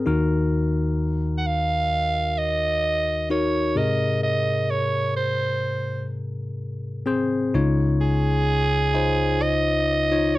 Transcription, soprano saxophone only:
1.38 1.48 F#5 medium
1.46 2.40 F5 loud
2.38 3.30 D#5 loud
3.31 3.79 C#5 medium
3.77 4.23 D#5 loud
4.23 4.72 D#5 medium
4.70 5.16 C#5 medium
5.16 6.07 C5 medium
8.01 9.43 G#4 loud
9.42 10.37 D#5 loud

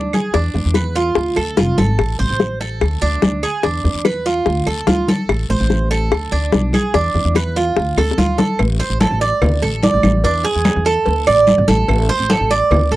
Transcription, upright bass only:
0.00 0.13 D2 medium
0.34 0.54 E2 medium
0.55 0.64 E2 loud
0.65 1.14 E2 medium
1.16 1.36 D2 medium
1.37 1.57 D2 medium
1.57 1.76 F1 medium
1.78 1.97 G#1 medium
1.99 2.19 A1 medium
2.20 2.30 A1 loud
2.30 2.79 A1 medium
2.82 3.01 D2 medium
3.02 3.22 D2 medium
3.23 3.42 D2 medium
3.64 3.84 E2 medium
3.85 3.94 E2 loud
3.94 4.44 E2 medium
4.46 4.66 D2 loud
4.66 4.86 D2 medium
4.87 5.07 D2 medium
5.29 5.49 A1 medium
5.49 5.59 A1 medium
5.60 6.09 A1 medium
6.11 6.31 D2 loud
6.32 6.52 D2 medium
6.53 6.73 B1 medium
6.94 7.14 E2 medium
7.14 7.24 E2 loud
7.25 7.74 E2 medium
7.76 7.96 D2 medium
7.97 8.17 D2 medium
8.18 8.38 D2 medium
8.60 8.79 A1 loud
8.90 9.10 A1 medium
9.11 9.30 A1 medium
9.42 9.61 D2 loud
9.62 9.92 A1 medium
9.94 10.03 A1 medium
10.04 10.23 A1 medium
10.24 10.44 E2 loud
10.55 10.75 E2 medium
10.76 10.95 E2 medium
11.07 11.26 D2 medium
11.27 11.57 A1 medium
11.58 11.67 A1 loud
11.68 11.88 A1 medium
11.88 12.08 A1 loud
12.19 12.39 A1 medium
12.41 12.60 A1 medium
12.71 12.91 D2 loud
12.91 12.96 A1 medium

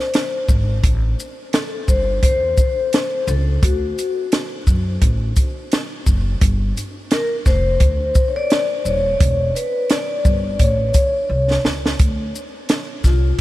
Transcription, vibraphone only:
0.00 0.45 C5 medium
1.54 1.89 A4 medium
1.88 2.22 C5 medium
2.23 3.31 C5 loud
3.28 3.64 A4 medium
3.63 4.28 F#4 medium
7.11 7.27 A#4 medium
7.46 8.31 C5 medium
8.28 8.37 C#5 medium
8.36 8.87 D5 loud
8.85 9.51 C#5 medium
9.55 9.91 B4 medium
9.91 10.62 D5 medium
10.61 11.61 C#5 medium
13.05 13.41 F4 medium

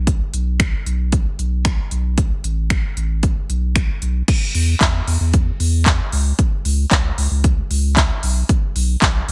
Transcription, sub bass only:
0.00 0.22 B1 medium
0.34 0.74 B1 medium
0.86 1.27 B1 medium
1.39 1.80 B1 medium
1.91 2.32 B1 medium
2.44 2.85 A1 medium
2.97 3.37 A1 medium
3.49 3.90 B1 medium
4.02 4.22 B1 medium
4.55 4.75 E2 loud
4.81 5.01 E2 medium
5.07 5.17 E2 medium
5.20 5.51 E2 medium
5.60 6.01 E2 loud
6.13 6.33 C#2 loud
6.65 6.85 C#2 loud
6.91 7.12 C#2 loud
7.18 7.28 C#2 medium
7.31 7.61 C#2 medium
7.70 8.11 C#2 loud
8.23 8.43 B1 medium
8.76 8.96 B1 loud
9.02 9.22 B1 loud
9.28 9.32 B1 medium

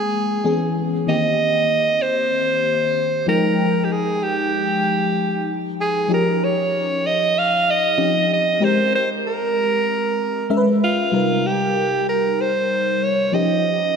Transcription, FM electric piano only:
0.00 0.40 G#3 medium
0.00 0.41 A#3 medium
0.00 0.41 C4 medium
0.00 0.42 G#4 medium
0.44 1.07 E3 medium
0.44 1.07 B3 medium
0.44 1.08 C#4 medium
0.44 1.08 G#4 medium
1.07 3.23 D#3 medium
1.07 3.23 A#3 soft
1.07 3.24 C4 soft
1.07 3.24 G4 medium
3.26 5.74 F3 medium
3.26 5.75 G#3 medium
3.26 5.75 D#4 medium
3.26 5.75 G5 medium
6.08 7.94 F3 medium
6.08 7.94 C#4 soft
6.08 7.95 D#4 soft
6.08 7.95 G4 medium
7.97 8.61 F3 medium
7.97 8.60 C4 soft
7.97 8.61 C#4 soft
7.97 8.61 D#4 soft
7.97 8.60 G4 medium
8.60 10.46 G#3 medium
8.60 10.46 C4 soft
8.60 10.47 G4 medium
8.60 10.47 A#4 medium
10.50 11.13 G#3 medium
10.50 11.13 C#4 medium
10.50 10.58 A#4 medium
10.50 11.13 E5 medium
10.57 11.17 B4 medium
11.12 13.29 C3 medium
11.12 13.29 G3 medium
11.12 13.30 D#4 soft
11.12 13.30 A#4 medium
13.32 13.96 F3 medium
13.32 13.96 C#4 medium
13.32 13.96 D#4 medium
13.32 13.96 G4 medium

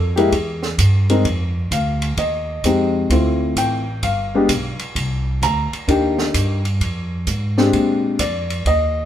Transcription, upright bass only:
0.00 0.30 F2 medium
0.32 0.77 E2 medium
0.78 1.23 G2 medium
1.25 1.70 F2 medium
1.71 2.16 D2 medium
2.18 2.62 D#2 medium
2.64 3.09 F2 medium
3.10 3.55 D2 medium
3.56 4.01 A1 medium
4.02 4.47 G1 medium
4.49 4.77 B1 medium
4.95 5.40 C2 medium
5.42 5.70 D2 medium
5.72 muted upright bass stroke soft
5.88 6.33 D#2 medium
6.34 6.79 G2 medium
6.81 7.25 F2 medium
7.27 7.72 G#2 medium
7.73 8.18 A#2 medium
8.20 8.64 F2 medium
8.66 9.05 D#2 medium

